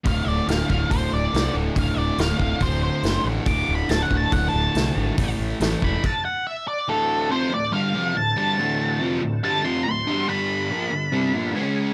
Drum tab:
CC |--------|--------|--------|----x---|
HH |o-o-o-o-|o-o-o-o-|o-o-o-o-|o-o-----|
SD |--o---o-|--o---o-|--o---o-|--o-----|
BD |o--oo---|o--oo---|o--oo---|o--oo---|

CC |--------|--------|--------|
HH |--------|--------|--------|
SD |--------|--------|--------|
BD |--------|--------|--------|